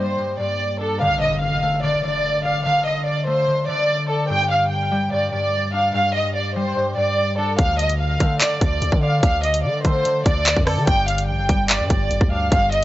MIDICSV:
0, 0, Header, 1, 7, 480
1, 0, Start_track
1, 0, Tempo, 410959
1, 1181, Time_signature, 4, 2, 24, 8
1, 15001, End_track
2, 0, Start_track
2, 0, Title_t, "Violin section"
2, 0, Program_c, 0, 48
2, 0, Note_on_c, 0, 72, 84
2, 431, Note_off_c, 0, 72, 0
2, 467, Note_on_c, 0, 74, 88
2, 916, Note_off_c, 0, 74, 0
2, 942, Note_on_c, 0, 69, 79
2, 1161, Note_off_c, 0, 69, 0
2, 1181, Note_on_c, 0, 77, 113
2, 1401, Note_off_c, 0, 77, 0
2, 1421, Note_on_c, 0, 75, 85
2, 1641, Note_off_c, 0, 75, 0
2, 1655, Note_on_c, 0, 77, 81
2, 2109, Note_off_c, 0, 77, 0
2, 2139, Note_on_c, 0, 74, 85
2, 2360, Note_off_c, 0, 74, 0
2, 2381, Note_on_c, 0, 74, 85
2, 2832, Note_off_c, 0, 74, 0
2, 2863, Note_on_c, 0, 77, 84
2, 3082, Note_off_c, 0, 77, 0
2, 3099, Note_on_c, 0, 77, 101
2, 3319, Note_off_c, 0, 77, 0
2, 3343, Note_on_c, 0, 75, 79
2, 3561, Note_off_c, 0, 75, 0
2, 3580, Note_on_c, 0, 74, 74
2, 3800, Note_off_c, 0, 74, 0
2, 3820, Note_on_c, 0, 72, 91
2, 4272, Note_off_c, 0, 72, 0
2, 4302, Note_on_c, 0, 74, 97
2, 4753, Note_off_c, 0, 74, 0
2, 4780, Note_on_c, 0, 69, 79
2, 5000, Note_off_c, 0, 69, 0
2, 5017, Note_on_c, 0, 79, 117
2, 5238, Note_off_c, 0, 79, 0
2, 5265, Note_on_c, 0, 77, 86
2, 5483, Note_off_c, 0, 77, 0
2, 5499, Note_on_c, 0, 79, 73
2, 5951, Note_off_c, 0, 79, 0
2, 5987, Note_on_c, 0, 74, 79
2, 6204, Note_off_c, 0, 74, 0
2, 6222, Note_on_c, 0, 74, 84
2, 6673, Note_off_c, 0, 74, 0
2, 6709, Note_on_c, 0, 77, 83
2, 6925, Note_off_c, 0, 77, 0
2, 6947, Note_on_c, 0, 77, 112
2, 7164, Note_off_c, 0, 77, 0
2, 7182, Note_on_c, 0, 75, 88
2, 7401, Note_off_c, 0, 75, 0
2, 7424, Note_on_c, 0, 74, 79
2, 7642, Note_off_c, 0, 74, 0
2, 7657, Note_on_c, 0, 72, 85
2, 8110, Note_off_c, 0, 72, 0
2, 8148, Note_on_c, 0, 74, 88
2, 8596, Note_off_c, 0, 74, 0
2, 8622, Note_on_c, 0, 69, 78
2, 8841, Note_off_c, 0, 69, 0
2, 8863, Note_on_c, 0, 77, 107
2, 9081, Note_off_c, 0, 77, 0
2, 9103, Note_on_c, 0, 75, 85
2, 9321, Note_off_c, 0, 75, 0
2, 9339, Note_on_c, 0, 77, 77
2, 9791, Note_off_c, 0, 77, 0
2, 9821, Note_on_c, 0, 74, 84
2, 10041, Note_off_c, 0, 74, 0
2, 10064, Note_on_c, 0, 74, 83
2, 10514, Note_off_c, 0, 74, 0
2, 10544, Note_on_c, 0, 77, 81
2, 10762, Note_off_c, 0, 77, 0
2, 10779, Note_on_c, 0, 77, 98
2, 10999, Note_off_c, 0, 77, 0
2, 11023, Note_on_c, 0, 75, 77
2, 11242, Note_off_c, 0, 75, 0
2, 11261, Note_on_c, 0, 74, 72
2, 11481, Note_off_c, 0, 74, 0
2, 11501, Note_on_c, 0, 72, 93
2, 11952, Note_off_c, 0, 72, 0
2, 11983, Note_on_c, 0, 74, 92
2, 12433, Note_off_c, 0, 74, 0
2, 12462, Note_on_c, 0, 69, 78
2, 12681, Note_off_c, 0, 69, 0
2, 12699, Note_on_c, 0, 79, 114
2, 12919, Note_off_c, 0, 79, 0
2, 12947, Note_on_c, 0, 77, 84
2, 13164, Note_off_c, 0, 77, 0
2, 13180, Note_on_c, 0, 79, 78
2, 13632, Note_off_c, 0, 79, 0
2, 13667, Note_on_c, 0, 74, 83
2, 13884, Note_off_c, 0, 74, 0
2, 13902, Note_on_c, 0, 74, 81
2, 14353, Note_off_c, 0, 74, 0
2, 14389, Note_on_c, 0, 77, 84
2, 14605, Note_off_c, 0, 77, 0
2, 14627, Note_on_c, 0, 77, 115
2, 14844, Note_off_c, 0, 77, 0
2, 14864, Note_on_c, 0, 75, 90
2, 15001, Note_off_c, 0, 75, 0
2, 15001, End_track
3, 0, Start_track
3, 0, Title_t, "Analog synth pad"
3, 0, Program_c, 1, 89
3, 0, Note_on_c, 1, 58, 83
3, 0, Note_on_c, 1, 62, 75
3, 0, Note_on_c, 1, 67, 73
3, 0, Note_on_c, 1, 74, 90
3, 1135, Note_off_c, 1, 62, 0
3, 1135, Note_off_c, 1, 74, 0
3, 1142, Note_off_c, 1, 58, 0
3, 1142, Note_off_c, 1, 67, 0
3, 15001, End_track
4, 0, Start_track
4, 0, Title_t, "Harp"
4, 0, Program_c, 2, 46
4, 0, Note_on_c, 2, 43, 87
4, 0, Note_on_c, 2, 55, 87
4, 0, Note_on_c, 2, 62, 83
4, 205, Note_off_c, 2, 43, 0
4, 219, Note_on_c, 2, 43, 72
4, 447, Note_off_c, 2, 43, 0
4, 461, Note_on_c, 2, 43, 65
4, 936, Note_off_c, 2, 62, 0
4, 941, Note_on_c, 2, 62, 84
4, 1180, Note_on_c, 2, 50, 84
4, 1239, Note_off_c, 2, 43, 0
4, 1239, Note_off_c, 2, 55, 0
4, 1901, Note_on_c, 2, 57, 91
4, 2127, Note_off_c, 2, 50, 0
4, 2141, Note_on_c, 2, 50, 75
4, 2368, Note_off_c, 2, 50, 0
4, 2382, Note_on_c, 2, 50, 70
4, 2860, Note_on_c, 2, 74, 86
4, 3086, Note_off_c, 2, 50, 0
4, 3100, Note_on_c, 2, 50, 89
4, 3815, Note_off_c, 2, 57, 0
4, 3820, Note_on_c, 2, 57, 85
4, 4047, Note_off_c, 2, 50, 0
4, 4061, Note_on_c, 2, 50, 66
4, 4210, Note_off_c, 2, 62, 0
4, 4287, Note_off_c, 2, 50, 0
4, 4301, Note_on_c, 2, 50, 79
4, 4775, Note_off_c, 2, 74, 0
4, 4780, Note_on_c, 2, 74, 79
4, 5020, Note_on_c, 2, 43, 91
4, 5079, Note_off_c, 2, 50, 0
4, 5740, Note_on_c, 2, 55, 86
4, 5967, Note_off_c, 2, 43, 0
4, 5981, Note_on_c, 2, 43, 70
4, 6205, Note_off_c, 2, 43, 0
4, 6219, Note_on_c, 2, 43, 74
4, 6700, Note_on_c, 2, 62, 85
4, 6925, Note_off_c, 2, 43, 0
4, 6937, Note_off_c, 2, 74, 0
4, 6939, Note_on_c, 2, 43, 91
4, 7647, Note_off_c, 2, 55, 0
4, 7661, Note_on_c, 2, 55, 88
4, 7708, Note_off_c, 2, 57, 0
4, 7885, Note_off_c, 2, 43, 0
4, 7899, Note_on_c, 2, 43, 72
4, 8127, Note_off_c, 2, 43, 0
4, 8141, Note_on_c, 2, 43, 64
4, 8616, Note_off_c, 2, 62, 0
4, 8621, Note_on_c, 2, 62, 86
4, 8860, Note_on_c, 2, 50, 85
4, 8919, Note_off_c, 2, 55, 0
4, 8920, Note_off_c, 2, 43, 0
4, 9581, Note_on_c, 2, 57, 93
4, 9807, Note_off_c, 2, 50, 0
4, 9821, Note_on_c, 2, 50, 73
4, 10047, Note_off_c, 2, 50, 0
4, 10061, Note_on_c, 2, 50, 73
4, 10541, Note_on_c, 2, 74, 89
4, 10766, Note_off_c, 2, 50, 0
4, 10780, Note_on_c, 2, 50, 84
4, 11496, Note_off_c, 2, 57, 0
4, 11500, Note_on_c, 2, 57, 86
4, 11728, Note_off_c, 2, 50, 0
4, 11742, Note_on_c, 2, 50, 67
4, 11890, Note_off_c, 2, 62, 0
4, 11967, Note_off_c, 2, 50, 0
4, 11981, Note_on_c, 2, 50, 80
4, 12455, Note_off_c, 2, 74, 0
4, 12460, Note_on_c, 2, 74, 79
4, 12700, Note_on_c, 2, 43, 91
4, 12759, Note_off_c, 2, 50, 0
4, 13421, Note_on_c, 2, 55, 92
4, 13647, Note_off_c, 2, 43, 0
4, 13661, Note_on_c, 2, 43, 69
4, 13886, Note_off_c, 2, 43, 0
4, 13900, Note_on_c, 2, 43, 74
4, 14381, Note_on_c, 2, 62, 85
4, 14606, Note_off_c, 2, 43, 0
4, 14617, Note_off_c, 2, 74, 0
4, 14620, Note_on_c, 2, 43, 90
4, 15001, Note_off_c, 2, 43, 0
4, 15001, Note_off_c, 2, 55, 0
4, 15001, Note_off_c, 2, 57, 0
4, 15001, Note_off_c, 2, 62, 0
4, 15001, End_track
5, 0, Start_track
5, 0, Title_t, "808-style bass"
5, 0, Program_c, 3, 38
5, 8861, Note_on_c, 3, 38, 115
5, 9552, Note_off_c, 3, 38, 0
5, 9582, Note_on_c, 3, 50, 97
5, 10042, Note_off_c, 3, 50, 0
5, 10060, Note_on_c, 3, 38, 103
5, 10291, Note_off_c, 3, 38, 0
5, 10301, Note_on_c, 3, 38, 106
5, 10414, Note_off_c, 3, 38, 0
5, 10421, Note_on_c, 3, 50, 98
5, 10767, Note_off_c, 3, 50, 0
5, 10781, Note_on_c, 3, 38, 106
5, 11260, Note_on_c, 3, 50, 98
5, 11278, Note_off_c, 3, 38, 0
5, 11488, Note_off_c, 3, 50, 0
5, 11501, Note_on_c, 3, 50, 101
5, 11962, Note_off_c, 3, 50, 0
5, 11982, Note_on_c, 3, 38, 99
5, 12327, Note_off_c, 3, 38, 0
5, 12340, Note_on_c, 3, 41, 108
5, 12580, Note_on_c, 3, 50, 101
5, 12598, Note_off_c, 3, 41, 0
5, 12695, Note_off_c, 3, 50, 0
5, 12700, Note_on_c, 3, 31, 109
5, 13181, Note_on_c, 3, 34, 101
5, 13199, Note_off_c, 3, 31, 0
5, 13300, Note_on_c, 3, 31, 99
5, 13318, Note_off_c, 3, 34, 0
5, 13415, Note_off_c, 3, 31, 0
5, 13422, Note_on_c, 3, 31, 102
5, 13781, Note_on_c, 3, 43, 101
5, 13798, Note_off_c, 3, 31, 0
5, 13895, Note_off_c, 3, 43, 0
5, 13901, Note_on_c, 3, 31, 100
5, 14132, Note_off_c, 3, 31, 0
5, 14140, Note_on_c, 3, 31, 105
5, 14253, Note_off_c, 3, 31, 0
5, 14260, Note_on_c, 3, 38, 102
5, 14606, Note_off_c, 3, 38, 0
5, 14621, Note_on_c, 3, 31, 106
5, 15001, Note_off_c, 3, 31, 0
5, 15001, End_track
6, 0, Start_track
6, 0, Title_t, "Impact"
6, 0, Program_c, 4, 103
6, 1181, Note_on_c, 4, 60, 86
6, 3101, Note_off_c, 4, 60, 0
6, 15001, End_track
7, 0, Start_track
7, 0, Title_t, "Drums"
7, 8861, Note_on_c, 9, 36, 124
7, 8861, Note_on_c, 9, 42, 76
7, 8977, Note_off_c, 9, 42, 0
7, 8978, Note_off_c, 9, 36, 0
7, 9101, Note_on_c, 9, 42, 73
7, 9218, Note_off_c, 9, 42, 0
7, 9221, Note_on_c, 9, 42, 84
7, 9338, Note_off_c, 9, 42, 0
7, 9581, Note_on_c, 9, 42, 68
7, 9582, Note_on_c, 9, 36, 88
7, 9698, Note_off_c, 9, 42, 0
7, 9699, Note_off_c, 9, 36, 0
7, 9820, Note_on_c, 9, 39, 114
7, 9820, Note_on_c, 9, 42, 74
7, 9937, Note_off_c, 9, 39, 0
7, 9937, Note_off_c, 9, 42, 0
7, 10060, Note_on_c, 9, 42, 82
7, 10061, Note_on_c, 9, 36, 100
7, 10177, Note_off_c, 9, 42, 0
7, 10178, Note_off_c, 9, 36, 0
7, 10301, Note_on_c, 9, 42, 69
7, 10418, Note_off_c, 9, 42, 0
7, 10420, Note_on_c, 9, 36, 95
7, 10537, Note_off_c, 9, 36, 0
7, 10780, Note_on_c, 9, 42, 78
7, 10781, Note_on_c, 9, 36, 123
7, 10897, Note_off_c, 9, 36, 0
7, 10897, Note_off_c, 9, 42, 0
7, 11020, Note_on_c, 9, 42, 72
7, 11137, Note_off_c, 9, 42, 0
7, 11141, Note_on_c, 9, 42, 83
7, 11258, Note_off_c, 9, 42, 0
7, 11501, Note_on_c, 9, 42, 67
7, 11502, Note_on_c, 9, 36, 85
7, 11617, Note_off_c, 9, 42, 0
7, 11618, Note_off_c, 9, 36, 0
7, 11741, Note_on_c, 9, 42, 83
7, 11858, Note_off_c, 9, 42, 0
7, 11981, Note_on_c, 9, 36, 103
7, 11981, Note_on_c, 9, 42, 78
7, 12098, Note_off_c, 9, 36, 0
7, 12098, Note_off_c, 9, 42, 0
7, 12221, Note_on_c, 9, 39, 108
7, 12338, Note_off_c, 9, 39, 0
7, 12341, Note_on_c, 9, 36, 93
7, 12457, Note_off_c, 9, 36, 0
7, 12460, Note_on_c, 9, 37, 98
7, 12461, Note_on_c, 9, 46, 54
7, 12577, Note_off_c, 9, 37, 0
7, 12578, Note_off_c, 9, 46, 0
7, 12700, Note_on_c, 9, 42, 79
7, 12701, Note_on_c, 9, 36, 121
7, 12817, Note_off_c, 9, 42, 0
7, 12818, Note_off_c, 9, 36, 0
7, 12942, Note_on_c, 9, 42, 73
7, 13058, Note_off_c, 9, 42, 0
7, 13061, Note_on_c, 9, 42, 83
7, 13178, Note_off_c, 9, 42, 0
7, 13421, Note_on_c, 9, 42, 67
7, 13422, Note_on_c, 9, 36, 85
7, 13538, Note_off_c, 9, 42, 0
7, 13539, Note_off_c, 9, 36, 0
7, 13660, Note_on_c, 9, 39, 113
7, 13661, Note_on_c, 9, 42, 75
7, 13777, Note_off_c, 9, 39, 0
7, 13778, Note_off_c, 9, 42, 0
7, 13901, Note_on_c, 9, 36, 101
7, 13901, Note_on_c, 9, 42, 84
7, 14018, Note_off_c, 9, 36, 0
7, 14018, Note_off_c, 9, 42, 0
7, 14141, Note_on_c, 9, 42, 71
7, 14258, Note_off_c, 9, 42, 0
7, 14260, Note_on_c, 9, 36, 96
7, 14377, Note_off_c, 9, 36, 0
7, 14620, Note_on_c, 9, 42, 75
7, 14621, Note_on_c, 9, 36, 121
7, 14737, Note_off_c, 9, 36, 0
7, 14737, Note_off_c, 9, 42, 0
7, 14861, Note_on_c, 9, 42, 74
7, 14978, Note_off_c, 9, 42, 0
7, 15001, End_track
0, 0, End_of_file